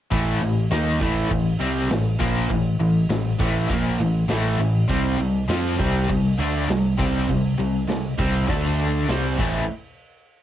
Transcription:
0.11 picked electric bass A1, overdriven electric guitar A2 E3 A3, kick, crash
0.41 picked electric bass A1, overdriven electric guitar A2 E3, crash
0.71 picked electric bass D#2, overdriven electric guitar D#3 A#3 D#4, snare, crash
1.00 picked electric bass A1, overdriven electric guitar A2 E3 A3, kick, crash
1.30 picked electric bass A1, overdriven electric guitar A2 E3, kick, crash
1.59 picked electric bass C2, overdriven electric guitar C3 G3 C4, crash
1.90 picked electric bass A1, overdriven electric guitar A2 E3, snare, crash
2.19 picked electric bass A#1, overdriven electric guitar A#2 F3 A#3, kick, crash
2.50 picked electric bass A1, overdriven electric guitar A2 E3, kick, crash
2.79 picked electric bass A1, overdriven electric guitar A2 E3, crash
3.09 picked electric bass A1, overdriven electric guitar A2 E3, snare, crash
3.39 picked electric bass A1, overdriven electric guitar A2 E3 A3, kick, crash
3.69 picked electric bass A#1, overdriven electric guitar A#2 F3 A#3, kick, crash
3.99 picked electric bass A1, overdriven electric guitar A2 E3, crash
4.29 picked electric bass A1, overdriven electric guitar A2 E3 A3, snare, crash
4.59 picked electric bass A1, overdriven electric guitar A2 E3, crash
4.89 picked electric bass C2, overdriven electric guitar C3 G3 C4, kick, crash
5.19 picked electric bass C2, overdriven electric guitar C3 G3, crash
5.49 picked electric bass F2, overdriven electric guitar F3 C4 F4, snare, crash
5.79 picked electric bass C2, overdriven electric guitar C3 G3 C4, kick, crash
6.09 picked electric bass C2, overdriven electric guitar C3 G3, kick, crash
6.38 picked electric bass D2, overdriven electric guitar D3 A3 D4, crash
6.68 picked electric bass C2, overdriven electric guitar C3 G3, snare, crash
6.98 picked electric bass C2, overdriven electric guitar C3 G3 C4, kick, crash
7.28 picked electric bass C2, overdriven electric guitar C3 G3, kick, crash
7.58 picked electric bass C2, overdriven electric guitar C3 G3, crash
7.88 picked electric bass C2, overdriven electric guitar C3 G3, snare, crash
8.19 picked electric bass C2, overdriven electric guitar C3 G3 C4, kick, crash
8.49 picked electric bass D2, overdriven electric guitar D3 A3 D4, kick, crash
8.79 crash
9.08 picked electric bass C2, overdriven electric guitar C3 G3 C4, snare, crash
9.38 picked electric bass A1, overdriven electric guitar A2 E3 A3 C4 E4, kick, crash

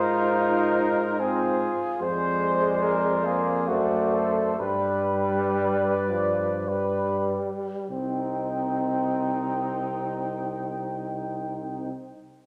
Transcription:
Already playing: tuba G#2, trombone D#4, trombone section F4, flugelhorn C5
0.01 cornet A#4
1.20 trombone C4, trombone section F4, cornet G#4, flugelhorn C5
2.00 tuba F2, trombone G#3, trombone section C5, cornet C5, flugelhorn D5
2.83 cornet A#4
3.26 trombone A#3, cornet G#4
3.68 tuba F#2, trombone A3, cornet F#4, trombone section C5, flugelhorn D5
4.14 cornet A4
4.59 tuba G2, trombone G3, trombone section B4, cornet B4, flugelhorn D5
5.57 cornet D5
6.11 trombone F3
6.67 trombone G3, trombone section B4, cornet B4, flugelhorn D5
7.87 tuba C2, flugelhorn D#4, trombone section D#4, cornet G5
7.91 trombone C4

